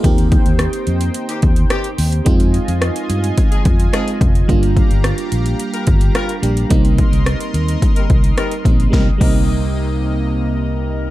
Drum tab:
CC |----------------|----------------|----------------|----------------|
HH |xxxxxxxxxxxxxxox|xxxxxxxxxxxxxxxx|xxxxxxxxxxxxxxxx|xxxxxxxxxxxxxxxx|
SD |----r-------r---|----r-------r---|----r-------r---|----r-------r---|
BD |o-o-------o-----|o-------o-o---o-|o-o-------o-----|o-o-----o-o---o-|

CC |--x-------------|
HH |----------------|
SD |o---------------|
BD |o-o-------------|